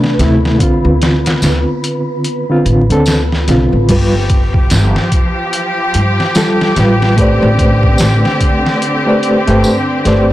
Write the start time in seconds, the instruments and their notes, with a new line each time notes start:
Already playing: reed electric piano C3 A3 D4, synth texture B3 B4
0.04 snare
0.19 upright bass D2, reed electric piano C3 A3 E4, snare, closed hi-hat
0.45 snare
0.59 reed electric piano D3 C4, kick, closed hi-hat
0.63 reed electric piano F4
0.85 upright bass D2
1.02 snare, closed hi-hat
1.26 snare, closed hi-hat
1.42 upright bass D2, snare, closed hi-hat, tambourine
1.84 closed hi-hat
2.24 closed hi-hat
2.49 reed electric piano D3 C4 F4
2.65 upright bass A1, closed hi-hat
2.90 upright bass D2, reed electric piano D3 C4 A4, closed hi-hat
3.06 snare, closed hi-hat, tambourine
3.32 snare
3.48 upright bass C2, reed electric piano D3 C4 F4, snare, closed hi-hat
3.73 upright bass A1
3.89 upright bass G1, string section F3 G4, reed electric piano G3 F4 B4, kick, closed hi-hat, crash
4.30 kick, closed hi-hat
4.54 kick
4.70 upright bass G1, snare, closed hi-hat, tambourine
4.96 snare
5.12 kick, closed hi-hat
5.53 closed hi-hat
5.94 upright bass G2, closed hi-hat
6.20 snare
6.35 reed electric piano G3 F4 A4, snare, closed hi-hat, tambourine
6.61 snare
6.76 upright bass A1, reed electric piano G3 F4 B4, snare, closed hi-hat
7.02 snare
7.17 string section D3 C4, reed electric piano A3 G4 B4 C5, kick, closed hi-hat
7.21 reed electric piano D5
7.42 upright bass A1
7.59 kick, closed hi-hat
7.83 kick
7.98 upright bass A1, snare, closed hi-hat, tambourine
8.25 snare
8.41 kick, closed hi-hat
8.66 snare
8.82 closed hi-hat
9.06 reed electric piano A3 G4 B4 C5 D5
9.23 closed hi-hat
9.47 upright bass G1, reed electric piano A3 G4 B4 C5 G5, closed hi-hat
9.64 tambourine
10.05 upright bass G1, reed electric piano A3 G4 B4 C5 D5, snare, closed hi-hat